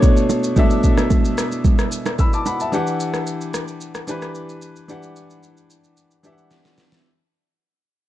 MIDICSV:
0, 0, Header, 1, 3, 480
1, 0, Start_track
1, 0, Tempo, 540541
1, 502, Time_signature, 4, 2, 24, 8
1, 7178, End_track
2, 0, Start_track
2, 0, Title_t, "Grand piano"
2, 0, Program_c, 0, 0
2, 0, Control_c, 0, 64, 127
2, 0, Note_on_c, 0, 47, 81
2, 0, Note_on_c, 0, 57, 73
2, 0, Note_on_c, 0, 62, 75
2, 0, Note_on_c, 0, 73, 94
2, 359, Note_off_c, 0, 47, 0
2, 363, Note_off_c, 0, 57, 0
2, 367, Note_off_c, 0, 62, 0
2, 371, Note_off_c, 0, 73, 0
2, 496, Note_on_c, 0, 47, 85
2, 504, Note_on_c, 0, 57, 78
2, 513, Note_on_c, 0, 62, 80
2, 521, Note_on_c, 0, 76, 93
2, 1269, Note_off_c, 0, 47, 0
2, 1273, Note_off_c, 0, 57, 0
2, 1277, Note_off_c, 0, 62, 0
2, 1282, Note_off_c, 0, 76, 0
2, 1949, Note_on_c, 0, 88, 63
2, 1955, Note_on_c, 0, 83, 52
2, 2064, Note_off_c, 0, 88, 0
2, 2067, Note_off_c, 0, 83, 0
2, 2074, Note_on_c, 0, 86, 71
2, 2079, Note_on_c, 0, 81, 57
2, 2180, Note_off_c, 0, 86, 0
2, 2183, Note_off_c, 0, 81, 0
2, 2189, Note_on_c, 0, 83, 71
2, 2195, Note_on_c, 0, 78, 59
2, 2304, Note_off_c, 0, 83, 0
2, 2307, Note_off_c, 0, 78, 0
2, 2314, Note_on_c, 0, 81, 61
2, 2319, Note_on_c, 0, 76, 51
2, 2415, Note_on_c, 0, 52, 86
2, 2422, Note_on_c, 0, 62, 76
2, 2431, Note_on_c, 0, 67, 79
2, 2432, Control_c, 0, 64, 0
2, 2440, Note_on_c, 0, 78, 97
2, 2539, Note_off_c, 0, 81, 0
2, 2541, Note_off_c, 0, 76, 0
2, 2589, Control_c, 0, 64, 127
2, 3188, Note_off_c, 0, 52, 0
2, 3192, Note_off_c, 0, 62, 0
2, 3196, Note_off_c, 0, 67, 0
2, 3201, Note_off_c, 0, 78, 0
2, 3616, Note_on_c, 0, 52, 83
2, 3624, Note_on_c, 0, 62, 76
2, 3632, Note_on_c, 0, 67, 74
2, 3641, Note_on_c, 0, 71, 88
2, 4199, Note_off_c, 0, 52, 0
2, 4203, Note_off_c, 0, 62, 0
2, 4207, Note_off_c, 0, 67, 0
2, 4211, Note_off_c, 0, 71, 0
2, 4335, Note_on_c, 0, 52, 82
2, 4344, Note_on_c, 0, 62, 78
2, 4352, Note_on_c, 0, 67, 77
2, 4361, Note_on_c, 0, 78, 91
2, 5108, Note_off_c, 0, 52, 0
2, 5113, Note_off_c, 0, 62, 0
2, 5117, Note_off_c, 0, 67, 0
2, 5121, Note_off_c, 0, 78, 0
2, 5533, Note_on_c, 0, 52, 80
2, 5541, Note_on_c, 0, 62, 77
2, 5551, Note_on_c, 0, 67, 74
2, 5559, Note_on_c, 0, 76, 72
2, 5610, Note_off_c, 0, 76, 0
2, 5615, Note_on_c, 0, 78, 88
2, 6117, Note_off_c, 0, 52, 0
2, 6121, Note_off_c, 0, 62, 0
2, 6126, Note_off_c, 0, 67, 0
2, 6158, Note_off_c, 0, 78, 0
2, 6275, Control_c, 0, 64, 0
2, 7178, End_track
3, 0, Start_track
3, 0, Title_t, "Drums"
3, 20, Note_on_c, 9, 60, 67
3, 24, Note_on_c, 9, 36, 91
3, 25, Note_on_c, 9, 82, 74
3, 109, Note_off_c, 9, 60, 0
3, 113, Note_off_c, 9, 36, 0
3, 113, Note_off_c, 9, 82, 0
3, 149, Note_on_c, 9, 82, 46
3, 238, Note_off_c, 9, 82, 0
3, 261, Note_on_c, 9, 61, 74
3, 263, Note_on_c, 9, 82, 79
3, 350, Note_off_c, 9, 61, 0
3, 352, Note_off_c, 9, 82, 0
3, 388, Note_on_c, 9, 82, 58
3, 477, Note_off_c, 9, 82, 0
3, 501, Note_on_c, 9, 64, 74
3, 502, Note_on_c, 9, 82, 69
3, 503, Note_on_c, 9, 36, 106
3, 590, Note_off_c, 9, 64, 0
3, 591, Note_off_c, 9, 82, 0
3, 592, Note_off_c, 9, 36, 0
3, 625, Note_on_c, 9, 82, 56
3, 714, Note_off_c, 9, 82, 0
3, 742, Note_on_c, 9, 82, 84
3, 744, Note_on_c, 9, 36, 83
3, 831, Note_off_c, 9, 82, 0
3, 832, Note_off_c, 9, 36, 0
3, 866, Note_on_c, 9, 37, 88
3, 867, Note_on_c, 9, 61, 74
3, 869, Note_on_c, 9, 82, 52
3, 955, Note_off_c, 9, 37, 0
3, 955, Note_off_c, 9, 61, 0
3, 958, Note_off_c, 9, 82, 0
3, 979, Note_on_c, 9, 60, 70
3, 979, Note_on_c, 9, 64, 70
3, 982, Note_on_c, 9, 82, 75
3, 985, Note_on_c, 9, 36, 92
3, 1068, Note_off_c, 9, 60, 0
3, 1068, Note_off_c, 9, 64, 0
3, 1071, Note_off_c, 9, 82, 0
3, 1074, Note_off_c, 9, 36, 0
3, 1110, Note_on_c, 9, 82, 54
3, 1198, Note_off_c, 9, 82, 0
3, 1224, Note_on_c, 9, 82, 91
3, 1225, Note_on_c, 9, 37, 103
3, 1313, Note_off_c, 9, 37, 0
3, 1313, Note_off_c, 9, 82, 0
3, 1349, Note_on_c, 9, 82, 47
3, 1437, Note_off_c, 9, 82, 0
3, 1461, Note_on_c, 9, 64, 74
3, 1462, Note_on_c, 9, 36, 110
3, 1463, Note_on_c, 9, 82, 74
3, 1549, Note_off_c, 9, 64, 0
3, 1551, Note_off_c, 9, 36, 0
3, 1551, Note_off_c, 9, 82, 0
3, 1587, Note_on_c, 9, 37, 91
3, 1587, Note_on_c, 9, 82, 59
3, 1676, Note_off_c, 9, 37, 0
3, 1676, Note_off_c, 9, 82, 0
3, 1702, Note_on_c, 9, 82, 93
3, 1791, Note_off_c, 9, 82, 0
3, 1826, Note_on_c, 9, 61, 87
3, 1829, Note_on_c, 9, 82, 50
3, 1831, Note_on_c, 9, 37, 94
3, 1915, Note_off_c, 9, 61, 0
3, 1918, Note_off_c, 9, 82, 0
3, 1920, Note_off_c, 9, 37, 0
3, 1942, Note_on_c, 9, 60, 61
3, 1942, Note_on_c, 9, 82, 72
3, 1943, Note_on_c, 9, 36, 93
3, 2031, Note_off_c, 9, 60, 0
3, 2031, Note_off_c, 9, 82, 0
3, 2032, Note_off_c, 9, 36, 0
3, 2070, Note_on_c, 9, 82, 43
3, 2159, Note_off_c, 9, 82, 0
3, 2182, Note_on_c, 9, 61, 79
3, 2184, Note_on_c, 9, 82, 81
3, 2271, Note_off_c, 9, 61, 0
3, 2273, Note_off_c, 9, 82, 0
3, 2309, Note_on_c, 9, 82, 60
3, 2398, Note_off_c, 9, 82, 0
3, 2423, Note_on_c, 9, 82, 66
3, 2512, Note_off_c, 9, 82, 0
3, 2548, Note_on_c, 9, 82, 58
3, 2637, Note_off_c, 9, 82, 0
3, 2664, Note_on_c, 9, 82, 84
3, 2753, Note_off_c, 9, 82, 0
3, 2785, Note_on_c, 9, 37, 89
3, 2788, Note_on_c, 9, 82, 51
3, 2874, Note_off_c, 9, 37, 0
3, 2877, Note_off_c, 9, 82, 0
3, 2901, Note_on_c, 9, 82, 75
3, 2990, Note_off_c, 9, 82, 0
3, 3030, Note_on_c, 9, 82, 55
3, 3119, Note_off_c, 9, 82, 0
3, 3144, Note_on_c, 9, 37, 100
3, 3144, Note_on_c, 9, 82, 92
3, 3232, Note_off_c, 9, 82, 0
3, 3233, Note_off_c, 9, 37, 0
3, 3267, Note_on_c, 9, 82, 45
3, 3356, Note_off_c, 9, 82, 0
3, 3381, Note_on_c, 9, 82, 72
3, 3470, Note_off_c, 9, 82, 0
3, 3506, Note_on_c, 9, 37, 90
3, 3506, Note_on_c, 9, 82, 54
3, 3595, Note_off_c, 9, 37, 0
3, 3595, Note_off_c, 9, 82, 0
3, 3620, Note_on_c, 9, 82, 91
3, 3709, Note_off_c, 9, 82, 0
3, 3747, Note_on_c, 9, 82, 49
3, 3749, Note_on_c, 9, 37, 90
3, 3836, Note_off_c, 9, 82, 0
3, 3838, Note_off_c, 9, 37, 0
3, 3862, Note_on_c, 9, 82, 68
3, 3951, Note_off_c, 9, 82, 0
3, 3988, Note_on_c, 9, 82, 46
3, 4077, Note_off_c, 9, 82, 0
3, 4101, Note_on_c, 9, 82, 81
3, 4189, Note_off_c, 9, 82, 0
3, 4228, Note_on_c, 9, 82, 56
3, 4317, Note_off_c, 9, 82, 0
3, 4342, Note_on_c, 9, 82, 72
3, 4430, Note_off_c, 9, 82, 0
3, 4465, Note_on_c, 9, 82, 58
3, 4553, Note_off_c, 9, 82, 0
3, 4583, Note_on_c, 9, 82, 80
3, 4672, Note_off_c, 9, 82, 0
3, 4709, Note_on_c, 9, 82, 53
3, 4798, Note_off_c, 9, 82, 0
3, 4823, Note_on_c, 9, 82, 71
3, 4912, Note_off_c, 9, 82, 0
3, 4948, Note_on_c, 9, 82, 55
3, 5037, Note_off_c, 9, 82, 0
3, 5063, Note_on_c, 9, 82, 90
3, 5152, Note_off_c, 9, 82, 0
3, 5186, Note_on_c, 9, 82, 46
3, 5275, Note_off_c, 9, 82, 0
3, 5301, Note_on_c, 9, 82, 71
3, 5390, Note_off_c, 9, 82, 0
3, 5426, Note_on_c, 9, 82, 56
3, 5515, Note_off_c, 9, 82, 0
3, 5540, Note_on_c, 9, 82, 90
3, 5628, Note_off_c, 9, 82, 0
3, 5666, Note_on_c, 9, 82, 50
3, 5754, Note_off_c, 9, 82, 0
3, 5779, Note_on_c, 9, 38, 50
3, 5780, Note_on_c, 9, 82, 67
3, 5868, Note_off_c, 9, 38, 0
3, 5869, Note_off_c, 9, 82, 0
3, 5906, Note_on_c, 9, 38, 54
3, 5907, Note_on_c, 9, 82, 44
3, 5995, Note_off_c, 9, 38, 0
3, 5996, Note_off_c, 9, 82, 0
3, 6019, Note_on_c, 9, 38, 81
3, 6019, Note_on_c, 9, 82, 82
3, 6107, Note_off_c, 9, 82, 0
3, 6108, Note_off_c, 9, 38, 0
3, 6146, Note_on_c, 9, 38, 86
3, 6146, Note_on_c, 9, 82, 55
3, 6235, Note_off_c, 9, 38, 0
3, 6235, Note_off_c, 9, 82, 0
3, 7178, End_track
0, 0, End_of_file